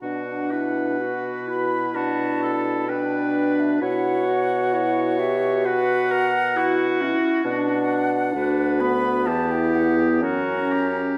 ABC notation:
X:1
M:4/4
L:1/16
Q:1/4=65
K:Bm
V:1 name="Flute"
f6 b2 a4 g3 e | f6 e2 f6- f z | f6 b2 a g f g ^a4 |]
V:2 name="Oboe"
F2 B6 F2 A2 B4 | c4 c4 B2 ^A2 F4- | F2 z2 B4 G4 F2 G2 |]
V:3 name="French horn"
D2 E2 F4 D4 D4 | F4 E2 G2 F2 z2 F2 E2 | D4 F4 E4 C4 |]
V:4 name="Clarinet"
D4 F2 E6 D4 | E2 F6 F2 z2 E2 C2 | D4 D2 B,6 C4 |]
V:5 name="Bassoon" clef=bass
B,,16 | B,,12- B,,2 z2 | B,,4 D,,4 E,,4 F,,4 |]